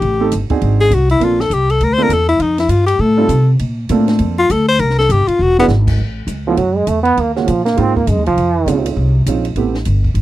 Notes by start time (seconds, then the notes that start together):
Already playing: G4
0.01 A1, ride
0.20 A3 C4 D#4 G4 A4
0.31 G1, hi-hat pedal, ride
0.50 C4 D4 D#4 F#4 G#4, muted upright bass stroke, kick, ride
0.61 G#1, ride
0.81 G#4
0.91 C2 F#4, hi-hat pedal, ride
1.09 E4, ride
1.20 A#1 A#3 C4 D4 F4 A4, ride
1.24 F4
1.40 A4, snare
1.50 C2 G4, hi-hat pedal, ride
1.70 A4, ride
1.80 D2 A#4, ride
1.94 C5
1.98 A#3 C4 D4 F4 A4
2.03 A#4
2.09 E2 A4, hi-hat pedal, ride
2.29 E4, ride
2.39 F2 D#4, ride
2.58 E4, snare, ride
2.68 G2 F4, hi-hat pedal, ride
2.86 G4, ride
2.99 A2 A4
3.17 G3 C4 D#4 F4 A4
3.28 C3, hi-hat pedal, ride
3.59 A#2, ride
3.89 A2 A#3 C4 D4 F4 A4, hi-hat pedal, ride
4.08 snare, ride
4.19 F2, ride
4.39 F4
4.50 D2 A4, hi-hat pedal, ride
4.68 C5
4.79 C2 A#4, ride
4.90 snare
4.99 A4, snare
5.09 G1 G4, hi-hat pedal, ride
5.27 F4, muted upright bass stroke, ride
5.39 E1 F#4
5.59 G#3 B3 D4 E4 F#4, snare
5.68 G#1, snare, hi-hat pedal
5.87 kick, crash
5.98 A1
6.27 C#2, hi-hat pedal, ride
6.47 F3 A3 B3 C#4 E4 F#4
6.57 F#2 F#3, ride
6.76 G#3
6.87 E2 A3, hi-hat pedal, ride
7.03 B3, ride
7.17 D#2 A#3, ride
7.36 C#3 G#3 A#3 C#4 F4 F#4, snare
7.46 A#2 F3, hi-hat pedal, ride
7.65 A#3, snare, ride
7.76 G#2 G#3 A#3 C4 D#4 F4, ride
7.96 A#3, kick
8.07 F#2 G#3, hi-hat pedal, ride
8.17 D#2
8.26 C2 F3, ride
8.37 F2, ride
8.66 C#2 G#3 C4 C#4 D#4 F4, hi-hat pedal, ride
8.86 ride
8.96 C2
9.26 A#1 G#3 C4 C#4 D#4 F4, hi-hat pedal, ride
9.45 ride
9.56 A1 A3 B3 C4 E4 G4, ride
9.75 snare
9.85 G1, hi-hat pedal, ride
10.04 kick
10.14 G#1, ride